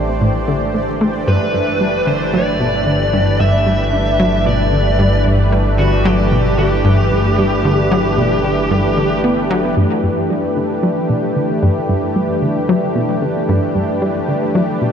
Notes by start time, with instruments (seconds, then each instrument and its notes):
Already playing: analog synth bass A1, analog synth pad E3 A3 D4 G4 C5, synth texture D5
0.21 synth arpeggio sound A2
0.48 synth arpeggio sound D3
0.74 synth arpeggio sound A3
1.01 synth arpeggio sound A3
1.27 analog synth bass G1, synth arpeggio sound G2, analog synth pad E3, lead electric guitar B4
1.36 analog synth pad A3 D4
1.54 synth arpeggio sound G2
1.68 analog synth pad G4 B4
1.81 synth arpeggio sound G3
2.07 synth arpeggio sound D3, lead electric guitar C5
2.34 synth arpeggio sound F#3, lead electric guitar D5
2.60 synth arpeggio sound B2
2.87 synth arpeggio sound D3
3.13 synth arpeggio sound G2
3.40 synth arpeggio sound G2, lead electric guitar E5
3.66 synth arpeggio sound G3
3.93 synth arpeggio sound D3
4.20 synth arpeggio sound F#3
4.46 synth arpeggio sound B2, lead electric guitar D5
4.73 synth arpeggio sound D3
4.99 synth arpeggio sound G2
5.26 synth arpeggio sound G2
5.52 synth arpeggio sound G3
5.78 synth arpeggio sound D3, lead electric guitar F#4
6.05 synth arpeggio sound F#3, lead electric guitar G4
6.32 synth arpeggio sound B2
6.58 synth arpeggio sound D3, lead electric guitar G4
6.85 synth arpeggio sound G2
7.11 synth arpeggio sound G2
7.38 synth arpeggio sound G3
7.65 synth arpeggio sound D3
7.91 synth arpeggio sound F#3
8.18 synth arpeggio sound B2
8.44 synth arpeggio sound D3
8.71 synth arpeggio sound G2
8.97 synth arpeggio sound D3
9.24 synth arpeggio sound B3
9.51 synth arpeggio sound F#3
9.77 synth arpeggio sound G2
10.04 synth arpeggio sound G2
10.30 synth arpeggio sound G3
10.57 synth arpeggio sound D3
10.83 synth arpeggio sound F#3
11.10 synth arpeggio sound B2
11.36 synth arpeggio sound D3
11.63 synth arpeggio sound G2
11.89 synth arpeggio sound G2
12.16 synth arpeggio sound G3
12.42 synth arpeggio sound D3
12.69 synth arpeggio sound F#3
12.96 synth arpeggio sound B2
13.22 synth arpeggio sound D3
13.49 synth arpeggio sound G2
13.75 synth arpeggio sound G2
14.02 synth arpeggio sound G3
14.28 synth arpeggio sound D3
14.55 synth arpeggio sound F#3
14.82 synth arpeggio sound B2